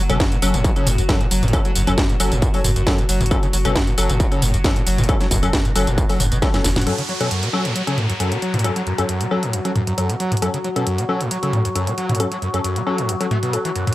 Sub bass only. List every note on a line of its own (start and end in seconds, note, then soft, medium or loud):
0.09 0.20 F#1 medium
0.42 0.53 F#1 loud
0.54 0.64 F#1 medium
0.87 0.98 F#1 loud
0.98 1.09 F#1 medium
1.31 1.42 F#1 loud
1.43 1.53 F#1 medium
1.76 1.87 F#1 medium
1.87 1.98 F#1 medium
2.20 2.31 F#1 loud
2.32 2.42 F#1 medium
2.65 2.76 F#1 loud
2.76 2.86 F#1 medium
3.09 3.20 F#1 loud
3.21 3.31 F#1 medium
3.53 3.64 F#1 loud
3.65 3.75 F#1 medium
3.98 4.09 F#1 loud
4.10 4.20 F#1 medium
4.42 4.53 F#1 loud
4.54 4.64 F#1 medium
4.87 4.98 F#1 loud
4.98 5.09 F#1 medium
5.31 5.42 F#1 medium
5.43 5.53 F#1 medium
5.76 5.87 F#1 loud
5.87 5.98 F#1 medium
6.20 6.31 F#1 loud
6.32 6.42 F#1 medium
6.64 6.76 F#1 loud
6.76 6.86 F#1 medium